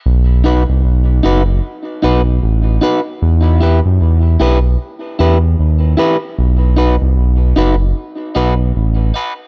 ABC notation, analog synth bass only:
X:1
M:4/4
L:1/16
Q:"Swing 16ths" 1/4=76
K:Bphr
V:1 name="Analog synth bass" clef=bass
B,,,3 C,, B,,,2 F,,,2 z2 B,,,2 A,,,2 z2 | E,,3 F,, E,,2 B,,,2 z2 E,,2 ^D,,2 z2 | B,,,3 C,, B,,,2 F,,,2 z2 B,,,2 A,,,2 z2 |]